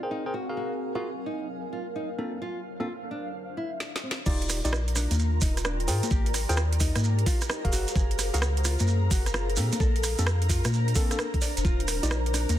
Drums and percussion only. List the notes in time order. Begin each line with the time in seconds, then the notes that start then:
3.80 snare
3.96 snare
4.11 snare
4.26 kick, crash, shekere
4.42 closed hi-hat
4.49 cross-stick, open hi-hat, shekere
4.65 closed hi-hat, shekere
4.73 cross-stick, shekere
4.88 closed hi-hat
4.96 cross-stick, open hi-hat, shekere
5.11 closed hi-hat, high conga, shekere
5.19 shekere
5.41 kick, open hi-hat, shekere
5.57 cross-stick, closed hi-hat, shekere
5.65 cross-stick, shekere
5.80 closed hi-hat
5.88 open hi-hat, shekere
6.03 closed hi-hat, high conga, shekere
6.10 kick, shekere
6.26 closed hi-hat
6.34 cross-stick, open hi-hat, shekere
6.49 closed hi-hat, shekere
6.57 cross-stick, shekere
6.73 closed hi-hat
6.80 kick, open hi-hat, shekere
6.96 cross-stick, closed hi-hat, high conga, shekere
7.04 shekere
7.19 closed hi-hat
7.26 kick, open hi-hat, shekere
7.41 cross-stick, closed hi-hat, shekere
7.50 cross-stick, shekere
7.65 kick, closed hi-hat
7.72 open hi-hat, shekere
7.88 closed hi-hat, shekere
7.96 kick, shekere
8.11 closed hi-hat
8.19 cross-stick, open hi-hat, shekere
8.34 closed hi-hat, shekere
8.42 cross-stick, shekere
8.57 closed hi-hat
8.65 cross-stick, open hi-hat, shekere
8.79 closed hi-hat, high conga, shekere
8.87 shekere
9.11 kick, open hi-hat, shekere
9.26 cross-stick, closed hi-hat, shekere
9.34 cross-stick, shekere
9.50 closed hi-hat
9.56 open hi-hat, shekere
9.72 closed hi-hat, high conga, shekere
9.80 kick, shekere
9.96 closed hi-hat
10.04 cross-stick, open hi-hat, shekere
10.18 closed hi-hat, shekere
10.27 cross-stick, shekere
10.42 closed hi-hat
10.49 kick, open hi-hat, shekere
10.64 cross-stick, closed hi-hat, high conga, shekere
10.73 shekere
10.88 closed hi-hat
10.95 kick, open hi-hat, shekere
11.11 cross-stick, closed hi-hat, shekere
11.19 cross-stick, shekere
11.34 kick, closed hi-hat
11.41 open hi-hat, shekere
11.57 closed hi-hat, shekere
11.65 kick, shekere
11.80 closed hi-hat
11.88 cross-stick, open hi-hat, shekere
12.03 closed hi-hat, shekere
12.11 cross-stick, shekere
12.26 closed hi-hat
12.34 cross-stick, open hi-hat, shekere
12.49 closed hi-hat, high conga, shekere